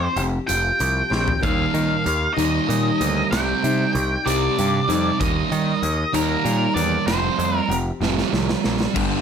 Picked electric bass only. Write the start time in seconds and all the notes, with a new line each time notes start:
0.16 F1
0.49 F1
0.81 C2
1.11 A#1
1.44 D#2
1.74 D#3
2.06 D#2
2.38 D#2
2.69 A#2
3.01 D2
3.32 C2
3.64 C3
3.95 C2
4.26 C2
4.59 G2
4.89 F2
5.21 D#2
5.52 D#3
5.83 D#2
6.14 D#2
6.45 A#2
6.76 E2
7.07 F1
7.39 F2
7.69 F1
8.00 F1
8.33 C2
8.66 A#1
8.96 G1